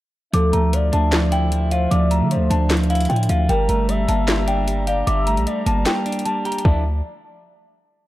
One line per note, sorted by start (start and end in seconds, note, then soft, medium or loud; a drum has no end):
0.33 0.52 D2 loud
0.33 3.46 D3 medium
0.33 3.46 F3 medium
0.33 0.72 F3 medium
0.33 6.61 D4 medium
0.33 0.71 A4 loud
0.33 3.46 E5 medium
0.33 0.50 D6 medium
0.33 closed hi-hat medium
0.53 0.91 D2 loud
0.53 1.52 A3 medium
0.53 0.70 A#5 medium
0.53 closed hi-hat medium
0.73 1.11 F3 medium
0.73 1.68 D5 medium
0.73 closed hi-hat medium
0.92 1.87 D2 loud
0.92 1.91 D4 medium
0.92 1.10 A5 medium
0.92 closed hi-hat medium
1.12 1.51 F3 medium
1.12 snare loud
1.12 clap loud
1.12 closed hi-hat medium
1.32 2.31 E4 medium
1.32 1.69 G5 medium
1.32 closed hi-hat medium
1.52 1.90 F3 medium
1.52 closed hi-hat medium
1.71 2.70 F4 medium
1.71 1.90 C5 medium
1.71 1.88 F5 medium
1.71 closed hi-hat medium
1.91 2.23 D2 loud
1.91 2.30 F3 medium
1.91 2.28 D5 loud
1.91 2.08 D6 medium
1.91 closed hi-hat medium
2.10 3.09 A3 medium
2.10 2.28 A#5 medium
2.10 closed hi-hat medium
2.22 2.38 D3 loud
2.31 2.69 F3 medium
2.31 2.68 C5 medium
2.31 closed hi-hat medium
2.36 2.50 D2 loud
2.50 3.07 D2 loud
2.50 3.48 D4 medium
2.50 2.67 A5 medium
2.50 closed hi-hat medium
2.70 3.09 F3 medium
2.70 snare loud
2.70 clap loud
2.70 closed hi-hat medium
2.77 closed hi-hat medium
2.83 closed hi-hat soft
2.90 3.49 E4 medium
2.90 3.07 F5 medium
2.90 closed hi-hat medium
2.95 closed hi-hat medium
3.01 closed hi-hat medium
3.05 closed hi-hat medium
3.09 3.29 A2 loud
3.09 3.49 F3 medium
3.09 3.26 G5 medium
3.09 closed hi-hat soft
3.16 closed hi-hat medium
3.23 closed hi-hat medium
3.29 3.48 D2 loud
3.29 3.49 F4 medium
3.29 3.46 F5 medium
3.29 closed hi-hat medium
3.49 3.68 G1 loud
3.49 3.88 G3 loud
3.49 6.62 G3 medium
3.49 3.86 A#4 loud
3.49 3.66 G5 loud
3.49 6.62 A5 medium
3.49 6.62 A#5 medium
3.49 closed hi-hat medium
3.69 4.07 G1 loud
3.69 4.08 A3 medium
3.69 3.86 A#5 medium
3.69 closed hi-hat medium
3.89 4.27 G3 medium
3.89 4.83 E5 medium
3.89 closed hi-hat medium
4.08 5.03 G1 loud
4.08 5.07 A#3 medium
4.08 4.25 A5 medium
4.08 closed hi-hat medium
4.28 4.67 G3 medium
4.28 snare loud
4.28 clap loud
4.28 closed hi-hat medium
4.47 5.46 D4 medium
4.47 4.85 G5 medium
4.47 closed hi-hat medium
4.68 5.06 G3 medium
4.68 closed hi-hat medium
4.87 5.86 G4 medium
4.87 5.06 D5 medium
4.87 5.04 F5 medium
4.87 closed hi-hat medium
5.07 5.39 G1 loud
5.07 5.46 G3 medium
5.07 5.44 E5 loud
5.07 5.24 D6 loud
5.07 closed hi-hat medium
5.27 5.66 A3 medium
5.27 5.44 A#5 medium
5.27 closed hi-hat medium
5.27 open hi-hat medium
5.37 5.46 A#1 loud
5.37 closed hi-hat soft
5.47 5.85 G3 medium
5.47 5.84 D5 medium
5.47 closed hi-hat medium
5.66 5.85 G1 loud
5.66 6.64 A#3 medium
5.66 5.83 A5 medium
5.66 closed hi-hat medium
5.86 6.25 G3 medium
5.86 6.23 G5 loud
5.86 snare loud
5.86 clap loud
5.86 closed hi-hat medium
6.06 6.64 D4 medium
6.06 closed hi-hat medium
6.12 closed hi-hat medium
6.19 closed hi-hat medium
6.25 6.65 G3 medium
6.25 6.42 A5 medium
6.25 closed hi-hat medium
6.45 6.65 G4 medium
6.45 6.62 A#5 medium
6.45 closed hi-hat soft
6.52 closed hi-hat medium
6.58 closed hi-hat medium
6.65 7.02 D2 loud
6.65 6.83 D3 medium
6.65 6.83 F3 medium
6.65 6.83 A3 medium
6.65 6.83 D4 medium
6.65 6.83 E4 medium
6.65 6.83 F4 medium
6.65 6.83 D5 medium
6.65 6.83 E5 medium
6.65 6.83 A5 medium
6.65 kick loud